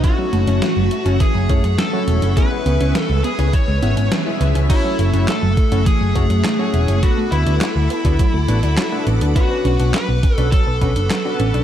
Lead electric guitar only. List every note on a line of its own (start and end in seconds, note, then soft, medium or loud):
0.04 1.24 F#4 loud
1.20 1.78 G#4 loud
1.79 2.36 A4 loud
2.37 3.02 B4 loud
3.02 3.24 A4 loud
3.24 3.54 G#4 loud
3.53 4.08 C#5 loud
4.70 5.30 E4 loud
5.28 5.82 A4 loud
5.86 7.06 G#4 loud
7.03 7.32 F#4 loud
7.32 9.03 E4 medium
9.36 9.96 F#4 loud
9.94 10.36 B4 loud
10.36 10.48 A4 loud
10.52 11.64 A4 loud